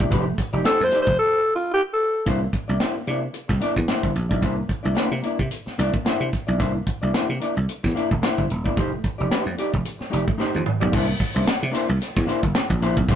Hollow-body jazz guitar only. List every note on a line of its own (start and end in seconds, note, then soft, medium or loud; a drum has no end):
0.00 0.10 A#3 soft
0.00 0.11 D4 soft
0.00 0.11 E4 medium
0.00 0.12 D5 medium
0.10 0.32 A3 medium
0.10 0.26 D#4 medium
0.10 0.26 G4 medium
0.10 0.25 C5 loud
0.26 muted hollow-body jazz guitar stroke soft
0.38 muted hollow-body jazz guitar stroke soft
0.53 0.63 A3 medium
0.53 0.63 D#4 medium
0.53 0.64 G4 medium
0.53 0.66 D5 medium
0.64 0.85 A3 medium
0.64 0.80 D#4 loud
0.64 0.79 G4 medium
0.64 0.78 C5 loud
0.79 muted hollow-body jazz guitar stroke soft
0.91 1.08 A3 medium
0.91 1.07 D#4 medium
0.91 1.06 G4 medium
0.91 1.06 D5 medium
1.07 muted hollow-body jazz guitar stroke medium
2.26 2.46 A#3 medium
2.26 2.42 D4 medium
2.26 2.41 E4 medium
2.26 2.40 C5 medium
2.41 muted hollow-body jazz guitar stroke soft
2.53 muted hollow-body jazz guitar stroke soft
2.68 2.79 A#3 soft
2.68 2.79 D4 soft
2.68 2.79 E4 soft
2.68 2.81 D5 medium
2.80 3.00 A#3 medium
2.80 2.95 D4 medium
2.80 2.95 E4 medium
2.80 2.94 C5 medium
2.95 muted hollow-body jazz guitar stroke soft
3.07 3.24 A#3 medium
3.07 3.22 D4 medium
3.07 3.21 E4 medium
3.07 3.21 D5 medium
3.22 muted hollow-body jazz guitar stroke soft
3.33 muted hollow-body jazz guitar stroke soft
3.48 muted hollow-body jazz guitar stroke soft
3.60 3.81 A#3 medium
3.60 3.75 D4 medium
3.60 3.75 E4 medium
3.60 3.75 D5 medium
3.75 muted hollow-body jazz guitar stroke soft
3.88 4.09 A#3 medium
3.88 4.09 D4 medium
3.88 4.09 E4 medium
3.88 4.09 C5 medium
4.15 muted hollow-body jazz guitar stroke soft
4.29 4.40 A#3 soft
4.29 4.41 D4 medium
4.29 4.42 E4 soft
4.29 4.42 D5 medium
4.42 4.62 A#3 medium
4.42 4.56 D4 medium
4.42 4.56 E4 medium
4.42 4.55 C5 medium
4.56 muted hollow-body jazz guitar stroke soft
4.68 muted hollow-body jazz guitar stroke soft
4.83 4.93 A#3 medium
4.83 4.95 D4 medium
4.83 4.95 E4 medium
4.83 4.96 D5 medium
4.95 5.17 A#3 medium
4.95 5.10 D4 medium
4.95 5.09 E4 medium
4.95 5.09 C5 medium
5.10 muted hollow-body jazz guitar stroke soft
5.22 5.40 A#3 medium
5.22 5.39 D4 medium
5.22 5.38 E4 medium
5.22 5.38 D5 medium
5.39 muted hollow-body jazz guitar stroke soft
5.51 muted hollow-body jazz guitar stroke soft
5.66 muted hollow-body jazz guitar stroke soft
5.78 5.99 A#3 medium
5.78 5.93 D4 medium
5.78 5.93 E4 medium
5.78 5.93 D5 loud
5.93 muted hollow-body jazz guitar stroke soft
6.05 6.25 A#3 medium
6.05 6.26 D4 medium
6.05 6.26 E4 medium
6.05 6.26 C5 medium
6.32 muted hollow-body jazz guitar stroke soft
6.47 6.57 A#3 soft
6.47 6.58 D4 soft
6.47 6.58 E4 medium
6.47 6.60 D5 medium
6.58 6.79 A#3 medium
6.58 6.74 D4 medium
6.58 6.73 E4 medium
6.58 6.73 C5 medium
6.74 muted hollow-body jazz guitar stroke soft
6.86 muted hollow-body jazz guitar stroke soft
7.02 7.12 A#3 medium
7.02 7.13 D4 soft
7.02 7.13 E4 medium
7.02 7.15 D5 medium
7.13 7.34 A#3 medium
7.13 7.28 D4 medium
7.13 7.28 E4 medium
7.13 7.28 C5 medium
7.29 muted hollow-body jazz guitar stroke soft
7.40 7.57 A#3 medium
7.40 7.56 D4 medium
7.40 7.55 E4 medium
7.40 7.55 D5 medium
7.56 muted hollow-body jazz guitar stroke soft
7.68 muted hollow-body jazz guitar stroke soft
7.83 muted hollow-body jazz guitar stroke soft
7.95 8.15 A#3 medium
7.95 8.11 D4 medium
7.95 8.10 E4 loud
7.95 8.11 D5 medium
8.11 muted hollow-body jazz guitar stroke soft
8.22 8.43 A#3 medium
8.22 8.43 D4 medium
8.22 8.43 E4 medium
8.22 8.44 C5 medium
8.50 muted hollow-body jazz guitar stroke soft
8.64 8.76 A#3 medium
8.64 8.76 D4 soft
8.64 8.77 E4 medium
8.64 8.78 D5 medium
8.76 8.97 A3 medium
8.76 8.92 D#4 medium
8.76 8.92 G4 medium
8.76 8.91 C5 medium
8.92 muted hollow-body jazz guitar stroke soft
9.04 muted hollow-body jazz guitar stroke soft
9.18 9.29 A3 medium
9.18 9.30 D#4 medium
9.18 9.31 G4 medium
9.18 9.32 D5 medium
9.31 9.52 A3 medium
9.31 9.45 D#4 medium
9.31 9.45 G4 medium
9.31 9.44 C5 loud
9.46 muted hollow-body jazz guitar stroke soft
9.57 9.74 A3 medium
9.57 9.73 D#4 medium
9.57 9.72 G4 medium
9.57 9.72 D5 medium
9.73 muted hollow-body jazz guitar stroke soft
9.85 muted hollow-body jazz guitar stroke soft
9.99 muted hollow-body jazz guitar stroke soft
10.10 10.31 A3 medium
10.10 10.26 D#4 medium
10.10 10.25 G4 medium
10.10 10.25 D5 medium
10.26 muted hollow-body jazz guitar stroke soft
10.38 10.59 A3 medium
10.38 10.59 D#4 medium
10.38 10.59 G4 medium
10.38 10.60 C5 medium
10.66 muted hollow-body jazz guitar stroke soft
10.80 10.92 A3 soft
10.80 10.92 D#4 soft
10.80 10.93 G4 medium
10.80 10.93 D5 medium
10.92 11.13 A#3 medium
10.92 11.07 D4 loud
10.92 11.07 E4 loud
10.92 11.06 C5 medium
11.07 muted hollow-body jazz guitar stroke soft
11.20 muted hollow-body jazz guitar stroke soft
11.34 11.45 A#3 medium
11.34 11.45 D4 medium
11.34 11.46 E4 medium
11.34 11.46 C5 medium
11.46 muted hollow-body jazz guitar stroke medium
11.61 muted hollow-body jazz guitar stroke medium
11.72 11.93 A#3 medium
11.72 11.88 D4 medium
11.72 11.87 E4 loud
11.72 11.87 C5 loud
11.88 muted hollow-body jazz guitar stroke medium
12.15 muted hollow-body jazz guitar stroke soft
12.27 12.47 A#3 medium
12.27 12.43 D4 loud
12.27 12.42 E4 medium
12.27 12.41 C5 loud
12.43 muted hollow-body jazz guitar stroke medium
12.55 muted hollow-body jazz guitar stroke soft
12.70 muted hollow-body jazz guitar stroke medium
12.81 13.02 A#3 medium
12.81 12.97 D4 medium
12.81 12.97 E4 loud
12.81 12.96 C5 loud
12.97 muted hollow-body jazz guitar stroke soft
13.09 13.15 A#3 medium
13.09 13.15 D4 loud
13.09 13.15 E4 medium
13.09 13.15 C5 loud